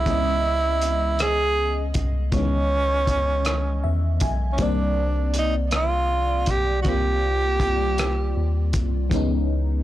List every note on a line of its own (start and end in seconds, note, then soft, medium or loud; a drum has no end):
0.00 1.20 E4 loud
0.05 1.91 C#2 medium
0.05 2.28 E3 medium
0.05 2.29 G#3 medium
0.05 2.29 B3 medium
0.05 kick loud
0.05 closed hi-hat medium
0.09 2.30 C#4 medium
0.09 2.31 D#5 medium
0.82 closed hi-hat medium
1.19 1.92 G#4 loud
1.19 cross-stick medium
1.19 closed hi-hat medium
1.94 2.29 C2 medium
1.94 kick medium
1.94 closed hi-hat medium
2.32 3.84 C#2 medium
2.32 4.55 E3 medium
2.32 4.55 G#3 medium
2.32 4.56 B3 medium
2.32 4.18 C#4 loud
2.32 kick loud
2.32 closed hi-hat medium
2.36 4.55 D#3 medium
2.36 4.57 C#4 medium
3.07 kick medium
3.07 closed hi-hat medium
3.45 cross-stick medium
3.45 closed hi-hat medium
3.84 4.18 E2 medium
3.84 4.19 E5 medium
4.20 4.56 B1 medium
4.20 4.57 G#5 medium
4.20 kick medium
4.20 closed hi-hat medium
4.53 6.80 D#3 medium
4.53 4.65 C#4 medium
4.58 6.44 C2 loud
4.58 6.81 G3 medium
4.58 6.82 A#3 medium
4.58 6.82 C4 medium
4.58 kick loud
4.58 closed hi-hat medium
4.62 5.37 D4 medium
4.62 6.83 D5 medium
5.34 closed hi-hat medium
5.39 5.55 D#4 medium
5.71 cross-stick medium
5.71 closed hi-hat medium
5.76 6.52 F4 medium
6.46 6.82 B1 medium
6.46 kick medium
6.46 closed hi-hat medium
6.50 6.80 G4 medium
6.82 8.33 C2 medium
6.82 9.07 D#3 medium
6.82 9.07 G3 medium
6.82 6.91 F#4 medium
6.82 kick loud
6.82 closed hi-hat medium
6.86 9.08 A#3 medium
6.86 9.09 C4 medium
6.86 9.09 F4 medium
6.86 8.76 G4 medium
7.60 kick medium
7.60 closed hi-hat medium
7.98 cross-stick medium
7.98 closed hi-hat medium
8.37 8.74 D#2 medium
8.73 9.08 C2 medium
8.73 kick medium
8.73 closed hi-hat medium
9.10 9.83 C#2 loud
9.10 9.83 E3 medium
9.10 9.83 G#3 medium
9.10 9.83 B3 medium
9.10 kick loud
9.10 closed hi-hat medium
9.14 9.83 C#4 medium
9.14 9.83 D#4 medium